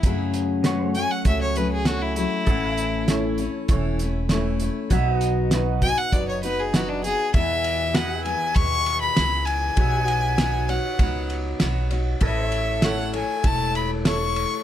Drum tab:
RD |--------|--------|--------|xxxxxxxx|
HH |xxxxxxxx|xxxxxxxx|xxxxxxxx|--------|
SD |--o---o-|--o---o-|--o---o-|--o---o-|
BD |o---o---|o---o---|o--oo---|o---o---|

RD |xxxxxxxx|xxxxxxxx|
HH |--------|--------|
SD |--o---o-|--o---o-|
BD |o---o---|o---o---|